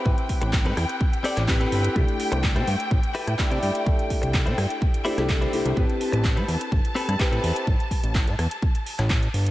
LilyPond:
<<
  \new Staff \with { instrumentName = "String section" } { \time 4/4 \key a \minor \tempo 4 = 126 g''1~ | g''1~ | g''1 | a''1~ |
a''1 | }
  \new Staff \with { instrumentName = "Clean electric guitar" } { \time 4/4 \key a \minor r4 r16 <c' g' a' b'>16 r4 <c' g' a' d''>8 r16 <c' g' a' b'>8. | r4 r16 <e' g' a' c''>16 r4 <e' g' a' b'>8 r16 <e' g' a' d''>8. | r4 r16 <e' g' a' c''>16 r4 <e' g' a' c''>8 r16 <e' g' a' c''>8. | r4 r16 <c' g' a' b'>16 r4 <c' g' a' b'>8 r16 <c' g' a' b'>8. |
r1 | }
  \new Staff \with { instrumentName = "Grand piano" } { \time 4/4 \key a \minor <c' e' g' b'>2. <c' e' g' b'>4 | <a d' e' g'>2. <a d' e' g'>4 | <a d' e' g'>2~ <a d' e' g'>8 <a d' e' g'>16 <a d' e' g'>8. <a d' e' g'>8 | <c' e' g' b'>2. <c' e' g' b'>4 |
r1 | }
  \new Staff \with { instrumentName = "Analog synth bass" } { \clef bass \time 4/4 \key a \minor a,,16 r8 a,,8 a,16 e,16 r4 a,,8 r16 g,,16 r16 | c,16 r8 c,8 c16 g,16 r16 a,,16 r8 a,16 r16 c16 g,16 r16 | c,16 r8 c,8 c16 g,16 r4 c,8 r16 c,16 c,16 | a,,16 r8 a,,8 a,16 e,16 r16 g,,16 r8 g,16 r16 a,16 e,16 r16 |
a,,16 r8 a,,8 a,16 e,16 r4 a,,8 r16 g,,16 r16 | }
  \new DrumStaff \with { instrumentName = "Drums" } \drummode { \time 4/4 bd16 hh16 <hho bd>16 hh16 <hc bd>16 hh16 <hho ss>16 hh16 bd16 hh16 hho16 <hc hh ss>16 <hc bd>16 hh16 hho16 hh16 | bd16 hh16 hho16 hh16 <hc bd>16 hh16 hho16 hh16 bd16 hh16 hho16 <hh ss>16 <hc bd>16 hh16 hho16 hh16 | bd16 hh16 <hho bd>16 hh16 <hc bd>16 hh16 <hho ss>16 hh16 bd16 hh16 hho16 <hc hh ss>16 <hc bd>16 hh16 hho16 hh16 | bd16 hh16 hho16 hh16 <hc bd>16 hh16 hho16 hh16 bd16 hh16 hho16 <hh ss>16 <hc bd>16 hh16 hho16 hh16 |
bd16 hh16 <hho bd>16 hh16 <hc bd>16 hh16 <hho ss>16 hh16 bd16 hh16 hho16 <hc hh ss>16 <hc bd>16 hh16 hho16 hh16 | }
>>